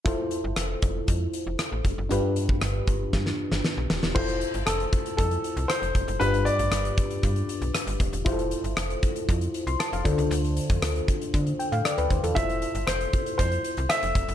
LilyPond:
<<
  \new Staff \with { instrumentName = "Grand piano" } { \time 4/4 \key f \lydian \tempo 4 = 117 r1 | r1 | c''4 a'4 a'4 c''4 | b'8 d''2. r8 |
r1 | r1 | e''4 c''4 c''4 e''4 | }
  \new Staff \with { instrumentName = "FM electric piano" } { \time 4/4 \key f \lydian << { r1 | r1 | r1 | r1 |
r2 r8. c'''16 a''16 f''8 r16 | r2 r8 g''16 f''16 d''16 b'16 c''16 a'16~ | a'16 r2. r8. | } \\ { <e' f' a' c''>1 | <d' f' g' b'>1 | <e' f' a' c''>1 | <d' f' g' b'>1 |
<e' f' g' a' c''>2.~ <e' f' g' a' c''>8 <d' f' a' c''>8~ | <d' f' a' c''>2.~ <d' f' a' c''>8 r8 | <e' f' a'>1 | } >> }
  \new Staff \with { instrumentName = "FM electric piano" } { \clef bass \time 4/4 \key f \lydian r1 | g,4. r2 r8 | r1 | g,4. r2 r8 |
r2. r8 d8~ | d4 r2. | r1 | }
  \new Staff \with { instrumentName = "FM bass" } { \clef bass \time 4/4 \key f \lydian f,,16 r8 g,,16 f,,8 f,,8 f,8 r16 f,,16 r16 a,,16 f,,16 ges,,16 | g,,16 r8 a,,16 g,,8 g,,8 g,8 r16 g,,16 r16 b,,16 ees,,16 e,,16 | f,,8. g,,16 f,,8 r8 f,8 r16 c,16 r16 f,,16 f,,16 ges,,16 | g,,8. a,,16 g,,8 r8 g,8 r16 b,,16 r16 g,,16 ees,,16 e,,16 |
f,,8. g,,16 f,,8 r8 f,8 r16 c,16 r16 f,,16 d,16 des,16 | d,8. f,16 d,8 r8 d8 r16 a,16 r16 d,16 ees,16 e,16 | f,,8. g,,16 f,,8 r8 f,8 r16 c,16 r16 f,,16 f,,16 ges,,16 | }
  \new DrumStaff \with { instrumentName = "Drums" } \drummode { \time 4/4 <hh bd>8 hh8 <hh ss>8 <hh bd>8 <hh bd>8 hh8 <hh ss>8 <hh bd>8 | hh8 hh16 bd16 <hh ss>8 <hh bd>8 <bd sn>16 sn8 sn16 sn8 sn16 sn16 | <cymc bd>16 hh16 hh16 hh16 <hh ss>16 hh16 <hh bd>16 hh16 <hh bd>16 hh16 hh16 hh16 <hh ss>16 hh16 <hh bd>16 hh16 | hh16 hh16 hh16 hh16 <hh ss>16 hh16 <hh bd>16 hh16 <hh bd>16 hh16 hh16 hh16 <hh ss>16 hh16 <hh bd>16 hh16 |
<hh bd>16 hh16 hh16 hh16 <hh ss>16 hh16 <hh bd>16 hh16 <hh bd>16 hh16 hh16 hh16 <hh ss>16 hh16 <hh bd>16 hh16 | hh16 hh16 hh16 <hh bd>16 <hh ss>16 hh16 <hh bd>16 hh16 <hh bd>16 hh16 hh16 hh16 <hh ss>16 hh16 <hh bd>16 hh16 | <hh bd>16 hh16 hh16 hh16 <hh ss>16 hh16 <hh bd>16 hh16 <hh bd>16 hh16 hh16 hh16 <hh ss>16 hh16 <hh bd>16 hh16 | }
>>